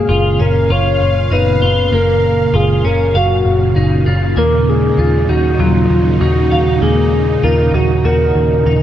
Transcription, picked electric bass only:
0.09 0.36 F#1 medium
0.40 0.67 F#1 medium
0.70 0.97 F#1 medium
1.00 1.27 F#1 medium
1.31 1.58 F#1 medium
1.61 1.89 F#1 medium
1.92 2.46 F#1 loud
2.53 2.80 F#1 medium
2.84 3.11 F#1 medium
3.15 3.42 F#1 medium
3.45 3.72 F#1 medium
3.76 4.03 F#1 medium
4.06 4.33 F#1 medium
4.37 4.91 D#2 medium
4.98 5.25 D#2 medium
5.29 5.56 D#2 medium
5.59 5.86 D#2 medium
5.90 6.17 D#2 medium
6.20 6.48 D#2 medium
6.51 6.78 D#2 medium
6.82 7.36 D#2 medium
7.43 7.70 D#2 medium
7.74 8.01 D#2 medium
8.04 8.31 D#2 medium
8.35 8.62 D#2 medium
8.66 8.83 D#2 medium

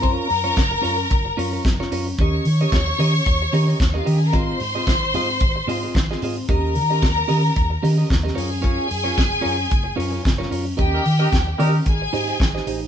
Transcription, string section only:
0.00 1.87 A#4 loud
0.00 1.88 A#5 loud
2.18 3.90 C#5 loud
2.18 3.90 C#6 loud
3.97 4.07 F4 soft
3.97 4.07 F5 medium
4.06 4.15 G4 medium
4.06 4.15 G5 medium
4.16 4.25 G#4 medium
4.16 4.25 G#5 medium
4.25 4.34 A#4 medium
4.25 4.34 A#5 medium
4.35 6.19 C5 loud
4.35 6.19 C6 loud
6.48 8.07 A#4 medium
6.48 8.07 A#5 loud
8.36 10.48 G#4 medium
8.36 10.48 G#5 loud
10.78 11.57 G4 medium
10.78 11.57 G5 loud
11.85 12.65 G#4 medium
11.85 12.65 G#5 loud

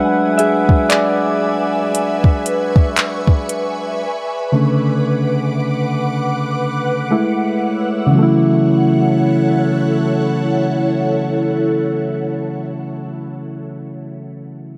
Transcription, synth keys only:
0.00 0.59 F#3 medium
0.00 0.59 G#3 medium
0.00 0.60 D4 medium
0.00 0.40 G#4 medium
0.00 0.36 B4 medium
0.00 0.38 E5 loud
0.00 0.40 F#5 loud
0.38 0.87 G#4 medium
0.38 0.92 E5 medium
0.89 7.08 G#4 medium
0.89 7.07 D5 medium
4.52 6.04 C#3 medium
4.52 6.04 D3 medium
4.52 6.04 A3 medium
7.11 8.10 G#3 medium
7.11 8.11 A3 medium
7.11 8.11 E4 medium
8.07 12.49 C#3 medium
8.11 12.53 E3 medium
8.15 12.57 F#3 medium
8.15 12.61 A3 medium
8.23 12.65 E4 medium

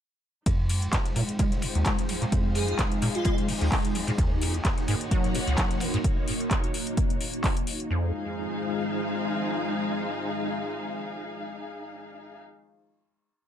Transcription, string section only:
0.46 6.04 D#4 medium
0.97 4.93 G#4 medium
2.03 4.18 F5 medium
5.03 6.04 C#5 medium
5.03 6.04 F#5 medium
7.90 12.38 D#4 medium
7.98 12.38 G#4 medium
8.05 12.38 F5 medium

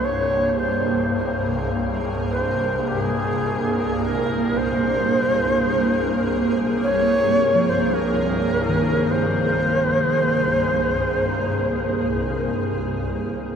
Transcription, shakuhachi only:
0.05 0.60 C#5 loud
0.59 1.16 C5 medium
1.17 1.70 C5 medium
2.31 2.89 C5 loud
2.88 3.01 G4 medium
3.01 4.03 G#4 medium
4.01 4.59 A#4 loud
4.57 6.56 C5 loud
6.83 7.71 C#5 loud
7.69 7.95 C5 loud
7.94 9.12 A#4 loud
9.11 12.49 C5 loud

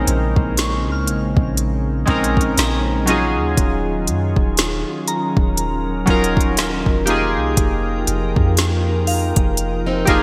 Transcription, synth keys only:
0.00 0.82 G#3 medium
0.00 0.83 C4 medium
0.00 0.83 C#4 medium
0.00 0.84 D#4 medium
0.00 3.10 E4 medium
0.00 0.85 A#4 medium
0.00 3.09 C5 medium
2.06 2.69 G#3 medium
2.06 2.70 C4 medium
2.06 2.71 C#4 medium
2.06 2.71 D#4 medium
2.10 2.72 A#4 loud
3.06 4.68 F#3 medium
3.06 4.69 C#4 medium
3.06 4.69 D#4 medium
3.06 4.70 F4 medium
3.10 4.70 G#4 loud
6.06 6.70 F#3 medium
6.06 6.70 C#4 medium
6.06 6.71 D#4 medium
6.06 6.71 F4 medium
6.10 6.72 A#4 loud
7.06 8.69 A#3 medium
7.06 8.69 D#4 medium
7.06 8.70 F4 medium
7.06 8.68 G4 medium
7.10 8.71 G#4 loud
10.05 10.23 A#3 medium
10.05 10.23 D#4 medium
10.05 10.23 F4 medium
10.05 10.23 G4 medium
10.10 10.23 G#4 loud

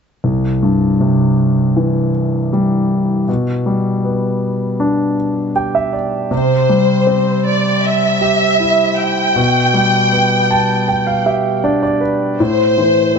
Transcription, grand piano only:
0.24 3.24 C2 soft
0.63 2.10 G2 soft
1.01 2.49 C3 soft
1.76 3.24 E3 soft
2.53 3.26 G3 soft
3.28 6.28 B2 soft
3.66 5.14 G3 soft
4.04 5.52 B3 soft
4.80 6.28 D4 soft
5.56 6.30 G4 soft
5.56 5.74 G5 medium
5.75 5.93 E5 medium
5.93 6.29 D5 soft
6.31 9.31 C3 soft
6.69 8.18 G3 soft
7.07 8.55 C4 soft
8.21 9.32 G4 soft
8.60 9.34 E4 soft
9.36 12.36 B2 soft
9.74 11.22 G3 soft
10.12 11.60 B3 soft
10.51 10.86 A5 medium
10.88 11.06 G5 medium
11.07 11.25 F5 soft
11.26 12.36 G4 soft
11.26 11.61 E5 soft
11.64 12.37 D4 soft
11.64 11.81 D5 medium
11.83 12.00 D5 medium
12.01 12.36 B4 soft
12.40 13.19 A2 medium
12.78 13.19 E3 soft
13.16 13.19 C4 soft

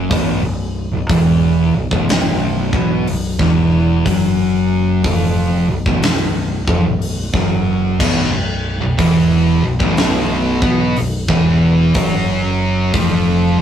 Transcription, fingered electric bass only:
0.11 0.41 B0 medium
0.45 0.90 B0 medium
0.93 1.09 B0 medium
1.10 1.70 E1 loud
1.75 1.91 B0 medium
1.91 2.69 B0 medium
2.73 3.05 B1 loud
3.09 3.38 B0 medium
3.40 4.02 E1 loud
4.06 5.00 F#1 medium
5.05 5.65 F1 medium
5.70 5.85 B0 medium
5.86 6.02 B0 medium
6.04 6.64 B0 medium
6.68 6.84 F1 medium
6.86 7.31 B0 medium
7.34 7.96 F#1 loud
8.00 8.30 B0 medium
8.34 8.79 B0 medium
8.84 8.98 B0 medium
8.99 9.60 E1 medium
9.66 9.80 B0 medium
9.81 10.58 B0 loud
10.63 10.94 B1 medium
10.98 11.28 B0 medium
11.29 11.91 E1 loud
11.95 12.90 F#1 medium
12.94 13.55 F1 medium

